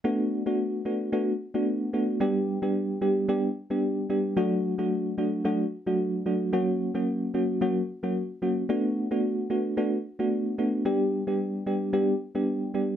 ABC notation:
X:1
M:4/4
L:1/16
Q:"Swing 16ths" 1/4=111
K:Bm
V:1 name="FM electric piano"
[A,B,DF]3 [A,B,DF]3 [A,B,DF]2 [A,B,DF]2 z [A,B,DF]3 [A,B,DF]2 | [G,B,DG]3 [G,B,DG]3 [G,B,DG]2 [G,B,DG]2 z [G,B,DG]3 [G,B,DG]2 | [F,A,DF]3 [F,A,DF]3 [F,A,DF]2 [F,A,DF]2 z [F,A,DF]3 [F,A,DF]2 | [F,^A,CF]3 [F,A,CF]3 [F,A,CF]2 [F,A,CF]2 z [F,A,CF] z2 [F,A,CF]2 |
[A,B,DF]3 [A,B,DF]3 [A,B,DF]2 [A,B,DF]2 z [A,B,DF]3 [A,B,DF]2 | [G,B,DG]3 [G,B,DG]3 [G,B,DG]2 [G,B,DG]2 z [G,B,DG]3 [G,B,DG]2 |]